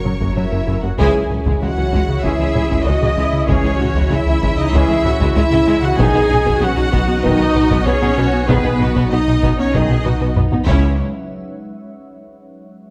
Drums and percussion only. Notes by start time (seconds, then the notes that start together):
0.05 taiko mid
0.21 taiko
0.36 taiko mid
0.99 taiko
1.30 taiko mid
1.46 taiko
1.93 taiko
2.24 taiko
2.55 taiko mid
2.71 taiko
3.03 taiko mid
3.49 taiko
3.81 taiko mid
3.97 taiko
4.43 taiko
4.75 taiko
5.06 taiko mid
5.21 taiko
5.53 taiko mid
6.00 taiko
6.31 taiko mid
6.47 taiko
6.93 taiko
7.25 taiko
7.56 taiko mid
7.71 taiko
8.03 taiko mid
8.49 taiko
8.81 taiko mid
8.96 taiko
9.43 taiko
9.74 taiko
10.06 taiko mid
10.36 taiko low-mid
10.52 taiko mid
10.68 taiko